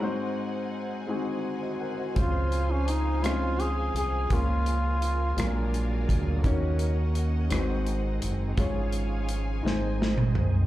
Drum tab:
HH |------------|x-x-x-x-x-x-|x-x-x-x-x-x-|x-x-x-x-x-x-|
SD |------------|------r-----|------r-----|------r-----|
T2 |------------|------------|------------|------------|
FT |------------|------------|------------|------------|
BD |------------|o-----------|o---------o-|o-----------|

HH |x-x-x-------|
SD |------o-o---|
T2 |---------o--|
FT |----------o-|
BD |o-----------|